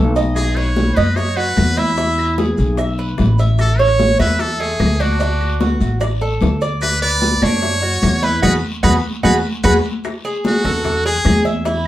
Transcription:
Already playing: B1 A4
0.16 D#5, high bongo, high conga, short guiro, maracas
0.36 G#4, high bongo, high conga, long guiro, claves, maracas
0.56 B4 C#5, high bongo, high conga, maracas
0.77 high bongo, high conga, short guiro, maracas
0.96 F#2 B4 D#5, high bongo, high conga, short guiro, claves, maracas
1.16 C#5, high bongo, high conga, long guiro, maracas
1.37 F#4 B4, high bongo, maracas
1.57 E2, high bongo, low bongo, high conga, short guiro, claves
1.77 E4 E5, high conga, short guiro, maracas
1.97 E4, high bongo, high conga, long guiro, maracas
2.18 high bongo, high conga, claves, maracas
2.38 G#4, high bongo, high conga, short guiro, maracas
2.58 B1, high bongo, high conga, short guiro, maracas
2.77 E5, high bongo, high conga, long guiro, claves, maracas
2.98 B4, high conga, maracas
3.18 A1, high bongo, low bongo, high conga, short guiro, maracas
3.38 E5, high bongo, high conga, short guiro, maracas
3.58 A4, high bongo, high conga, long guiro, claves, maracas
3.78 C#5, high bongo, high conga, maracas
3.99 high bongo, high conga, short guiro, maracas
4.19 E2 B4 E5, high bongo, high conga, short guiro, claves, maracas
4.39 A4, high bongo, high conga, long guiro, maracas
4.59 A3 G#4, high bongo, high conga, maracas
4.80 D2, high bongo, low bongo, high conga, short guiro, claves
5.00 D4 F#4, high conga, short guiro, maracas
5.20 D4, high bongo, high conga, long guiro, maracas
5.40 high bongo, high conga, claves, maracas
5.60 F#4, high bongo, high conga, short guiro, maracas
5.80 A1, high bongo, high conga, short guiro, maracas
6.00 D5, high bongo, long guiro, claves, maracas
6.21 A4, high conga, maracas
6.41 D2, high bongo, low bongo, high conga, short guiro, maracas
6.61 D5, high bongo, high conga, short guiro, maracas
6.81 B4, high bongo, high conga, long guiro, claves, maracas
7.02 B4 D5, high bongo, high conga
7.22 high bongo, high conga, short guiro
7.42 F#2 D4 C#5, high bongo, high conga, short guiro, claves, maracas
7.62 high bongo, high conga, long guiro, maracas
7.82 F#4, high bongo, high conga
8.02 E2, high bongo, low bongo, high conga, short guiro, claves
8.22 E4 B4, high conga, short guiro, maracas
8.42 E2 F#4 G#4 B4, low bongo, high conga, long guiro, claves, maracas
8.83 E2 F#4 G#4 B4, low bongo, high conga, claves, maracas
9.23 E2 F#4 G#4 B4, low bongo, high conga, long guiro, claves, maracas
9.63 E2 F#4 G#4 B4, low bongo, high conga, claves, maracas
10.04 high bongo, high conga, long guiro, claves, maracas
10.25 G#4, high conga, maracas
10.44 F#4, high bongo, high conga, short guiro, maracas
10.64 E2 A4, high conga, low conga, short guiro, claves
10.85 high bongo, high conga, low conga, long guiro, maracas
11.05 G#4, high conga
11.25 E2, high bongo, low bongo, high conga, short guiro, claves, maracas
11.45 E5, high conga, short guiro, maracas
11.65 E4, high bongo, high conga, long guiro, maracas

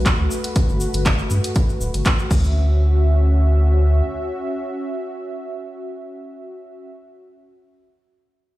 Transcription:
Already playing: B1 A3 F#4 B4
0.06 kick, clap, closed hi-hat, cabasa
0.19 D2
0.31 cabasa
0.44 closed hi-hat, cabasa
0.55 kick, closed hi-hat, cabasa
0.69 G1, cabasa
0.80 cabasa
0.94 G1, closed hi-hat, cabasa
1.05 kick, clap, closed hi-hat, cabasa
1.19 cabasa
1.30 G2, cabasa
1.44 closed hi-hat, cabasa
1.55 kick, closed hi-hat, cabasa
1.69 cabasa
1.81 D1, cabasa
1.94 G1, closed hi-hat, cabasa
2.05 kick, clap, closed hi-hat, cabasa
2.19 cabasa
2.31 D2 C#4 F#4 E5, kick, crash, cabasa
2.44 cabasa

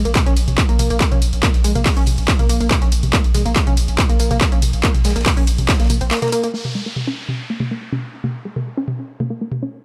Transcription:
0.05 A#1 A#3, closed hi-hat, tambourine
0.15 kick, snare, clap, closed hi-hat, mid tom, ride, tambourine
0.26 A#1 C#4, closed hi-hat, tambourine
0.36 A#1, open hi-hat, ride, tambourine
0.48 A#1, closed hi-hat, mid tom, ride, tambourine
0.58 kick, clap, closed hi-hat, ride, tambourine
0.69 A#1 A#3, closed hi-hat, tambourine
0.79 A#1 A#3, mid tom, open hi-hat, ride, tambourine
0.90 A#1 A#3, closed hi-hat, tambourine
1.00 kick, snare, clap, closed hi-hat, ride, tambourine
1.12 A#1 C#4, closed hi-hat, mid tom, tambourine
1.22 A#1, open hi-hat, ride, tambourine
1.33 A#1, closed hi-hat, tambourine
1.43 A#3, kick, clap, closed hi-hat, mid tom, ride, tambourine
1.54 A#1, snare, closed hi-hat, tambourine
1.64 A#1 G#3, open hi-hat, ride, tambourine
1.75 A#1 A#3, closed hi-hat, mid tom, tambourine
1.86 kick, snare, clap, closed hi-hat, open hi-hat, tambourine
1.97 A#1 C#4, closed hi-hat, tambourine
2.06 A#1, mid tom, open hi-hat, ride, tambourine
2.18 A#1, closed hi-hat, tambourine
2.28 kick, clap, closed hi-hat, ride, tambourine
2.39 A#1 A#3, closed hi-hat, mid tom, tambourine
2.49 A#1 A#3, open hi-hat, ride, tambourine
2.60 A#1 A#3, closed hi-hat, tambourine
2.70 kick, snare, clap, mid tom, open hi-hat, ride, tambourine
2.82 A#1 C#4, snare, closed hi-hat, tambourine
2.92 A#1, open hi-hat, ride, tambourine
3.03 A#1, closed hi-hat, mid tom, tambourine
3.13 A#3, kick, clap, closed hi-hat, ride, tambourine
3.24 A#1, closed hi-hat, tambourine
3.34 A#1 G#3, snare, mid tom, open hi-hat, ride, tambourine
3.46 A#1 A#3, closed hi-hat, tambourine
3.55 kick, snare, clap, closed hi-hat, ride, tambourine
3.67 A#1 C#4, closed hi-hat, mid tom, tambourine
3.77 A#1, open hi-hat, ride, tambourine
3.88 A#1, closed hi-hat, ride, tambourine
3.98 kick, clap, closed hi-hat, mid tom, ride, tambourine
4.09 A#1 A#3, closed hi-hat, tambourine
4.19 A#1 A#3, open hi-hat, ride, tambourine
4.31 A#1 A#3, closed hi-hat, mid tom, tambourine
4.41 kick, snare, clap, closed hi-hat, ride, tambourine
4.52 A#1 C#4, closed hi-hat, tambourine
4.62 A#1, mid tom, open hi-hat, ride, tambourine
4.73 A#1, closed hi-hat, tambourine
4.83 A#3, kick, clap, closed hi-hat, ride, tambourine
4.94 A#1, snare, closed hi-hat, mid tom, tambourine
5.04 A#1 G#3, snare, open hi-hat, ride, tambourine
5.10 snare, ride
5.15 A#1 A#3, snare, closed hi-hat, ride, tambourine
5.21 snare, ride
5.26 kick, snare, clap, closed hi-hat, mid tom, open hi-hat, tambourine
5.37 A#1 C#4, closed hi-hat, tambourine
5.47 A#1, open hi-hat, ride, tambourine
5.58 A#1, closed hi-hat, mid tom, tambourine
5.68 kick, snare, clap, closed hi-hat, ride, tambourine
5.74 snare, ride
5.80 A#1 A#3, snare, closed hi-hat, ride, tambourine
5.84 snare, ride
5.90 A#1 A#3, mid tom, open hi-hat, ride, tambourine
6.01 A#1 C4, closed hi-hat, tambourine
6.11 A#3, snare, clap, open hi-hat, ride, tambourine
6.17 snare, ride
6.22 A#3, snare, closed hi-hat, mid tom, ride, tambourine
6.28 snare, ride
6.32 A#3, open hi-hat, ride, tambourine
6.43 A#3, closed hi-hat, tambourine
6.54 A#3, downlifter
6.65 mid tom
6.75 G#3
6.86 A#3
6.96 mid tom
7.07 C#4
7.29 mid tom
7.50 A#3
7.60 A#3, mid tom
7.71 A#3
7.92 C#4, mid tom
8.24 A#3, mid tom
8.45 G#3
8.56 A#3, mid tom
8.77 C#4
8.88 mid tom
9.20 A#3, mid tom
9.30 A#3
9.41 A#3
9.52 mid tom
9.63 C#4

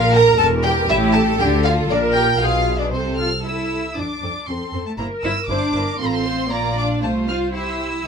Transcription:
Already playing: A#1 A#2 F4 A#4 F5
0.12 A#4 A#5
0.37 E1 E2 A4 A5
0.63 G4 G5
0.88 A1 A2 E4 G4 E5
1.13 A4 A5
1.39 D2 D3 G4 A4 G5
1.64 F4 F5
1.89 A#1 A#2 D4 A#4 D5
2.14 G4 G5
2.39 B1 B2 F4 G#4 F5
2.79 D4 D5
2.91 C2 C3 C4 A4 C5
3.17 F4 F6
3.44 E4 E6
3.96 F2 C4 D4 A4 D6
4.22 F2 C4 A4
4.48 F2 C4 A4 C6
4.73 F2 C4 A4
4.86 A3 A5
4.98 G1 A#3 E4 A#4 C5 A#5
5.22 G1 E4 C5 E6
5.47 G1 D4 E4 C5 D6
5.74 G1 E4 A#4 C5
5.98 A1 C4 F4 A4 C5 C6
6.05 A#5
6.13 C6
6.24 C5
6.50 A#1 A#3 F4 D5 A#5
6.76 D4 D6
7.02 C2 A3 F4 C5 A5
7.28 F4 F6
7.54 E4 G4 C5 E6

